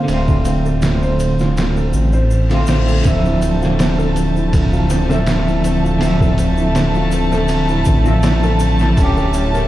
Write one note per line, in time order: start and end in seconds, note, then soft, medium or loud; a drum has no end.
0.00 2.07 D3 medium
0.00 0.08 C4 loud
0.00 0.11 A#4 medium
0.00 0.10 C5 medium
0.00 0.11 F5 loud
0.07 1.93 D1 loud
0.07 2.08 A3 medium
0.07 0.27 C4 medium
0.07 2.10 C4 medium
0.07 ride medium
0.07 shaker soft
0.13 2.11 F4 medium
0.28 0.45 F4 medium
0.28 kick medium
0.28 shaker soft
0.45 0.64 C4 loud
0.45 ride medium
0.45 shaker medium
0.66 0.76 A4 medium
0.66 shaker soft
0.82 1.02 C4 medium
0.82 snare loud
0.82 ride medium
0.82 shaker medium
1.03 1.18 C5 loud
1.03 shaker soft
1.20 1.39 C4 medium
1.20 ride medium
1.20 shaker medium
1.39 1.56 F4 medium
1.39 snare soft
1.39 shaker soft
1.57 1.76 C4 loud
1.57 snare loud
1.57 ride medium
1.57 reverse cymbal medium
1.57 shaker soft
1.77 1.87 A4 medium
1.77 shaker soft
1.93 2.65 A1 loud
1.93 2.13 C4 medium
1.93 shaker medium
2.13 2.29 C5 loud
2.13 shaker soft
2.30 2.49 C4 medium
2.30 shaker medium
2.50 3.00 D3 medium
2.50 3.01 A3 medium
2.50 3.02 C4 medium
2.50 2.67 F4 medium
2.50 ride medium
2.50 shaker soft
2.54 3.03 F4 medium
2.67 3.01 A1 medium
2.67 2.87 C4 medium
2.67 snare loud
2.67 ride medium
2.67 shaker medium
2.87 2.97 A4 medium
2.87 shaker soft
3.02 5.98 D1 loud
3.02 5.04 D3 medium
3.02 9.68 A3 medium
3.02 3.24 C4 medium
3.02 5.05 C4 medium
3.02 9.68 A5 medium
3.02 kick loud
3.02 ride medium
3.02 shaker soft
3.08 5.08 F3 loud
3.08 5.07 E5 medium
3.24 3.41 E4 medium
3.24 shaker soft
3.42 3.61 C4 medium
3.42 ride medium
3.42 shaker medium
3.62 3.78 F4 medium
3.62 snare soft
3.62 shaker soft
3.79 3.98 C4 loud
3.79 snare loud
3.79 ride medium
3.79 shaker medium
3.99 4.14 A4 loud
3.99 shaker soft
4.16 4.35 C4 medium
4.16 ride medium
4.16 shaker medium
4.35 4.52 E4 medium
4.35 shaker soft
4.52 4.71 C4 medium
4.52 kick loud
4.52 ride medium
4.52 shaker soft
4.72 4.89 F4 medium
4.72 shaker soft
4.90 5.09 C4 loud
4.90 snare soft
4.90 ride medium
4.90 shaker medium
5.07 5.95 D3 medium
5.07 5.97 C4 medium
5.07 5.25 A4 medium
5.07 shaker soft
5.11 5.98 E5 medium
5.11 snare soft
5.15 6.00 F3 medium
5.26 5.46 C4 medium
5.26 snare loud
5.26 ride medium
5.26 shaker soft
5.47 5.63 E4 medium
5.47 shaker soft
5.64 5.83 C4 medium
5.64 ride medium
5.64 shaker loud
5.84 6.00 F4 medium
5.84 shaker soft
5.98 7.83 D1 loud
5.98 8.00 D3 medium
5.98 6.20 C4 medium
5.98 8.01 C4 medium
5.98 ride medium
6.02 8.03 E5 medium
6.02 shaker soft
6.07 8.04 F3 loud
6.21 6.36 A4 medium
6.21 kick loud
6.21 shaker soft
6.38 6.57 C4 medium
6.38 ride medium
6.38 shaker medium
6.57 6.75 E4 medium
6.57 shaker soft
6.75 6.94 C4 medium
6.75 snare loud
6.75 ride medium
6.75 shaker medium
6.95 7.12 F4 medium
6.95 shaker soft
7.11 7.31 C4 medium
7.11 ride medium
7.11 shaker loud
7.32 7.48 A4 loud
7.32 snare soft
7.32 shaker soft
7.48 7.68 C4 medium
7.48 ride medium
7.48 shaker medium
7.68 7.85 E4 medium
7.68 shaker soft
7.85 8.94 A1 loud
7.85 8.05 C4 medium
7.85 kick loud
7.85 ride medium
7.85 shaker loud
8.02 8.91 D3 medium
8.02 8.93 C4 medium
8.02 8.22 F4 medium
8.02 shaker soft
8.08 8.96 F3 medium
8.08 8.94 E5 medium
8.23 8.42 C4 medium
8.23 snare loud
8.23 ride medium
8.23 shaker medium
8.43 8.59 A4 loud
8.43 shaker soft
8.59 8.79 C4 medium
8.59 ride medium
8.59 shaker loud
8.79 8.97 E4 medium
8.79 snare medium
8.79 shaker soft
8.97 9.68 D1 loud
8.97 9.16 C#4 medium
8.97 9.68 C#4 medium
8.97 kick loud
8.97 ride medium
8.97 shaker medium
9.03 9.68 G4 loud
9.17 9.34 A4 medium
9.17 shaker soft
9.33 9.53 C#4 loud
9.33 ride medium
9.33 shaker medium
9.53 9.68 A#4 medium
9.53 snare soft
9.53 shaker soft